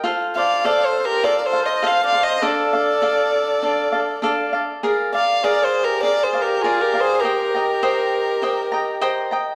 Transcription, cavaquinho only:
\new Staff \with { instrumentName = "Cavaquinho" } { \time 4/4 \key bes \major \tempo 4 = 101 <f' a' c'' f''>8 <a' c'' f''>8 <f' a' c'' f''>4 <f' a' c'' f''>8 <a' c'' f''>8 <f' a' c'' f''>8 <a' c'' f''>8 | <d' a' d'' f''>8 <a' d'' f''>8 <d' a' d'' f''>4 <d' a' d'' f''>8 <a' d'' f''>8 <d' a' d'' f''>8 <a' d'' f''>8 | <aes' bes' d'' f''>8 <bes' d'' f''>8 <aes' bes' d'' f''>4 <aes' bes' d'' f''>8 <bes' d'' f''>8 <aes' bes' d'' f''>8 <bes' d'' f''>8 | <c'' ees'' g'' bes''>8 <ees'' g'' bes''>8 <c'' ees'' g'' bes''>4 <c'' ees'' g'' bes''>8 <ees'' g'' bes''>8 <c'' ees'' g'' bes''>8 <ees'' g'' bes''>8 | }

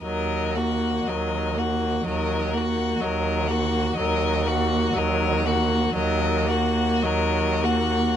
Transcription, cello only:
\new Staff \with { instrumentName = "Cello" } { \clef bass \time 4/4 \key ees \minor \tempo 4 = 61 ees,4 ees,4 ees,4 ees,4 | ees,4 ees,4 ees,4 ees,4 | }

